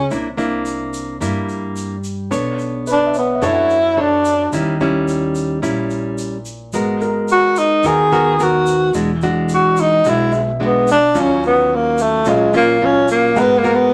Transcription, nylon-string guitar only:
0.11 C3 A#3 D4 E4
0.37 A#3 D4 E4
1.21 G3 A#3 D4 E4
2.31 B3 D4 A4 C#5
3.42 F#3 D4 A4 C#5
3.97 D4 A4 C#5
4.53 D#3 G3 C#4 E4
4.81 G3 C#4 E4
5.62 A#2 G3 C#4 E4
6.74 G#3 B3 F#4 A#4
7.84 D#3 B3 F#4 A#4
8.12 B3 F#4 A#4
8.39 B3 F#4 A#4
8.95 E3 G#3 D4 F#4
9.23 G#3 D4 F#4
10.05 B2 G#3 D4 F#4
10.60 G#3 D4 F#4
11.14 D#3 F#3 C#4 F4
12.26 A#2 F#3 C#4 F4
12.53 F#3 C#4 F4
12.82 F#3 C#4 F4
13.36 G#3 B3 F#4 A#4
13.64 B3 F#4 A#4

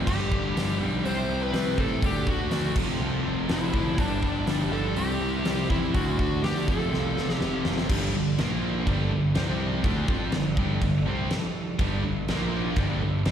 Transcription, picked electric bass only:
0.07 G1
0.32 G1
0.55 G1
0.80 B1
1.04 C2
1.29 C2
1.53 C2
1.78 A2
2.03 D2
2.27 D2
2.51 D2
2.76 F1
3.00 C2
3.26 F1
3.50 F1
3.74 D2
3.98 G1
4.23 G1
4.48 G1
4.71 G1
4.96 C2
5.20 C2
5.45 C2
5.70 E2
5.95 D2
6.19 D2
6.43 D2
6.68 F1
6.92 C2
7.17 F1
7.41 F1
7.66 F#1
7.90 G1
8.15 G1
8.39 A#1
8.87 G1
9.12 G1
9.36 C2
9.84 D2
10.08 F2
10.34 G1
10.57 G1
10.81 G1
11.07 C2
11.79 G1
12.05 G1
12.28 A#1
12.77 G1
13.02 G1
13.26 C2

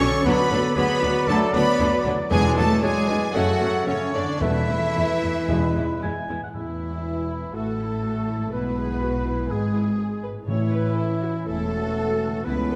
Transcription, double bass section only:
0.25 D2
0.51 D2
0.77 D2
1.03 D2
1.28 D2
1.54 D2
1.80 D2
2.05 D2
2.31 E2
2.58 E2
2.83 E2
3.09 E2
3.35 F#2
3.61 F#2
3.88 F#2
4.14 F#2
4.41 E2
4.69 E2
4.96 E2
5.22 E2
5.49 E2
5.76 E2
6.02 E2
6.29 E2
6.55 E1
7.55 A1
8.53 B1
9.51 G#1
10.47 A1
11.47 E1
12.45 C#2

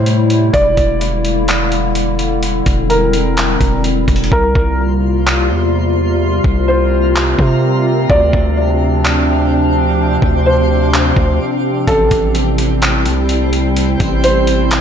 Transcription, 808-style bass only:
Already playing: A2
0.54 E1
0.77 E1
2.66 E1
3.61 E1
4.08 E1
4.32 C2
4.55 C2
5.50 E2
6.44 C2
7.39 C3
8.10 D2
8.33 D2
10.22 D2
11.17 D2
11.88 A1
12.11 A1
13.06 C2
14.00 A1

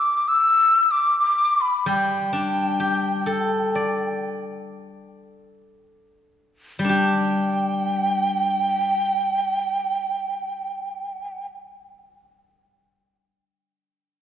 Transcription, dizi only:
Already playing: D6
0.28 E6
0.83 E6
0.91 D6
1.20 D6
1.61 B5
1.89 G5
6.89 G5

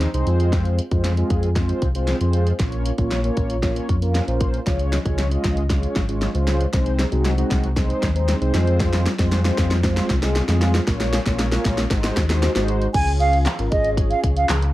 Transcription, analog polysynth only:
0.14 G#3 C4 D#4 C5
0.27 G#3 C4 F4 C5
0.91 G#3 C4 F4 C5
1.17 G#3 C4 F4 G#4
1.56 G#3 C4 F4 C5
1.95 G#3 C4 F4 C5
2.21 G#3 C4 F4 C5
2.59 A#3 C#4 F4 C#5
2.98 A#3 C#4 F4 C#5
3.24 A#3 C#4 F4 C#5
3.63 A#3 C#4 F4 C#5
4.02 A#3 C#4 F4 A#4
4.28 A#3 C#4 F4 C5
4.67 G#3 C#4 F4 C#5
5.05 G#3 C#4 F4 C#5
5.31 G#3 C#4 F4 D#5
5.70 G#3 C#4 F4 C#5
6.09 G#3 C#4 F4 C#5
6.34 G#3 C#4 F4 C5
6.73 G#3 C4 D#4 C5
7.12 G#3 C4 D#4 F#4
7.37 G#3 C4 D#4 F#4
7.76 G#3 C4 D#4 C5
8.15 G#3 C4 D#4 C5
8.41 G#3 C4 D#4 C5
8.54 G#3 C4 F4 C5
9.18 G#3 C4 F4 C5
9.44 G#3 C4 F4 C5
9.83 G#3 C4 F4 C5
10.22 G#3 C4 F4 G#4
10.48 G#3 C4 F4 G#4
10.87 A#3 C#4 F4 C#5
11.26 A#3 C#4 F4 C#5
11.52 A#3 C#4 F4 C#5
11.91 G#3 D#4 F#4 C5
12.30 G#3 D#4 F#4 C5
12.55 G#3 D#4 F#4 C5
12.94 C#4 G#4
13.59 C#4 F4 A#4
13.71 C#4 F4 G#4

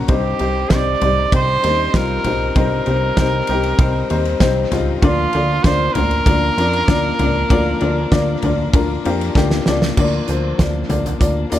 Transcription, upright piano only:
Already playing: A#3 C#4 F#4 A#4 C#5
0.08 G2 G3 C4 D#4 C5
0.39 G3 C4 D#4 C5
0.70 G3 C4 D#4 C5
1.01 G3 C4 D#4 D5
1.32 G3 C4 D#4 G4
1.63 G3 C4 D#4 C5
1.93 G3 C4 D#4 F4
2.24 G3 C4 D#4 C5
2.55 G2 G3 C4 D#4 C5
2.86 G3 C4 D#4 C5
3.17 G3 C4 D#4 C5
3.49 G3 C4 D#4 G4
3.79 G3 C4 D#4 C5
4.10 G3 C4 D#4 C5
4.40 G3 C4 D#4 C5
4.71 G3 C4 D#4 F4
5.03 D3 A#3 D4 F4 D5
5.33 A#3 D4 F4 D5
5.64 A#3 D4 F4 D5
5.96 A#3 D4 F4 D5
6.27 A#3 D4 F4 D5
6.57 A#3 D4 F4 D5
6.88 A#3 D4 F4 D5
7.19 A#3 D4 F4 D5
7.49 D3 A#3 D4 F4 D5
7.80 A#3 D4 F4 D5
8.11 A#3 D4 F4 D5
8.42 A#3 D4 F4 D5
8.73 A#3 D4 F4 A#4
9.04 A#3 D4 F4 G4
9.35 A#3 D4 F4 G4
9.67 A#3 D4 F4 D5
9.97 D3 A#3 F4 D5
10.27 A#3 F4 C5
10.57 A#3 F4 D5
10.88 A#3 F4 D5
11.19 A#3 F4 D5
11.50 A#3 F4 D5

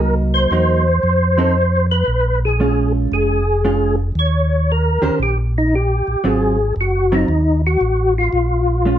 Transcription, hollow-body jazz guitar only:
Already playing: F#3 A#3 D#4
0.52 F#3 A#3 D#4
1.38 F3 C4 D#4 A4
2.60 G#3 C#4 F4
3.65 G#3 C#4 F4
5.02 D#3 C#4 G4 C5
6.24 F#3 C4 F4
7.12 F#3 C4 F4
8.85 G#3 C#4 F4

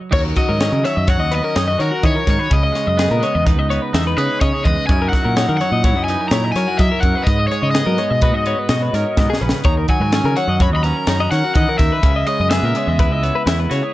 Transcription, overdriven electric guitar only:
0.13 C#5
0.38 D#5
0.86 E5
1.10 F#5
1.35 D#5
1.58 D#5
1.81 A#4
2.06 C#5
2.30 C#5
2.53 D#5
4.18 B4
4.41 C#5
4.64 D#5
4.87 G#5
5.09 F#5
5.57 F#5
6.04 G#5
6.29 A#5
6.52 G#5
6.78 E5
7.00 F#5
7.24 D#5
7.47 C#5
7.71 D#5
9.66 A#5
9.90 G#5
10.37 F#5
10.62 B5
10.76 B5
10.83 A#5
11.31 F#5
11.54 F#5
11.78 E5
12.27 D#5
12.50 E5

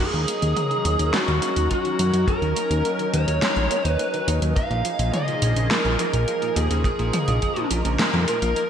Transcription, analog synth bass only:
0.14 D#2
0.42 D#2
0.85 D#2
0.99 D#2
1.28 D#2
1.56 D#2
1.99 F#2
2.13 F#2
2.42 D#2
2.71 D#2
3.13 D#2
3.28 D#2
3.56 A#1
3.85 D#2
4.28 D#2
4.42 D#2
4.71 A#1
4.99 A#1
5.42 A#1
5.56 A#1
5.85 A#1
6.13 A#1
6.56 D#2
6.71 D#2
6.99 A#1
7.28 A#1
7.71 A#1
7.85 A#1
8.14 F2
8.42 A#1

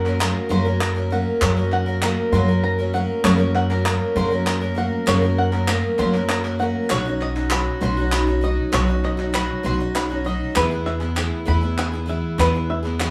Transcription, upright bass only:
Already playing: F#2
0.50 F#2
1.41 F#2
2.32 F#2
3.24 F#2
4.15 F#2
5.08 F#2
5.99 F#2
6.91 B1
7.81 B1
8.73 B1
9.64 B1
10.56 E2
11.48 E2
12.38 E2

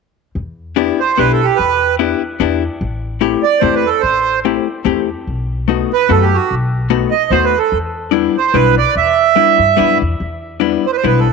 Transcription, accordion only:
1.00 C5
1.18 B4
1.32 A4
1.43 G4
1.56 B4
3.43 D5
3.60 C5
3.75 B4
3.86 A4
4.00 C5
5.93 B4
6.11 A4
6.22 G4
6.34 F#4
7.11 D#5
7.31 C5
7.44 B4
7.58 A4
8.38 C5
8.54 B4
8.78 D5
8.97 E5
10.86 C5
10.93 B4
10.97 C5
11.06 B4
11.19 A4

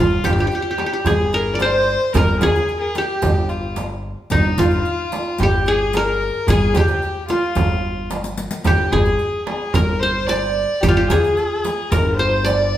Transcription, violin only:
Already playing: F4
0.25 G4
1.07 G#4
1.34 A#4
1.54 D5
1.60 C5
2.13 A#4
2.40 G#4
2.79 G#4 A#4
2.95 G4
3.49 F4
4.31 D#4
4.59 F4
5.40 G4
5.68 G#4
5.95 A#4
6.48 G#4
6.75 G4
7.29 F4
8.65 G4
8.91 G#4
9.47 G#4
9.73 A#4
9.99 C5
10.27 D5
10.81 G4
10.95 G4
11.08 G#4
11.90 A#4
12.17 C5
12.45 D5

